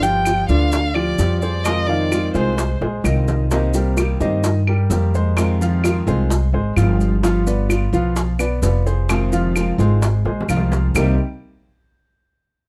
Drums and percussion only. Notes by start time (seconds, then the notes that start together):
0.03 high bongo, maracas
0.25 high bongo, claves, maracas
0.49 high bongo, maracas
0.72 high bongo, maracas
0.95 high bongo, claves
1.19 high bongo, low bongo, maracas
1.42 maracas
1.65 high bongo, claves, maracas
1.89 high bongo
2.12 high bongo, claves, maracas
2.35 high bongo, maracas
2.58 high bongo, maracas
2.82 high bongo
3.04 high bongo, claves, maracas
3.28 low bongo, maracas
3.51 high bongo, maracas
3.74 high bongo, maracas
3.97 high bongo, claves, maracas
4.20 high bongo, maracas
4.44 high bongo, maracas
4.67 high bongo, claves
4.91 high bongo, low bongo, maracas
5.15 maracas
5.37 high bongo, claves, maracas
5.61 high bongo, maracas
5.84 high bongo, claves, maracas
6.07 high bongo, maracas
6.30 high bongo, maracas
6.54 high bongo
6.76 high bongo, low bongo, claves, maracas
7.01 maracas
7.23 high bongo, maracas
7.47 high bongo, maracas
7.69 high bongo, claves, maracas
7.93 high bongo, maracas
8.16 high bongo, maracas
8.39 high bongo, claves, maracas
8.63 high bongo, low bongo, maracas
8.87 maracas
9.09 high bongo, claves, maracas
9.32 high bongo, maracas
9.56 high bongo, claves, maracas
9.79 high bongo, maracas
10.02 high bongo, maracas
10.25 high bongo
10.41 low bongo
10.49 claves, maracas
10.57 low bongo
10.72 low bongo, maracas
10.95 low bongo, claves, maracas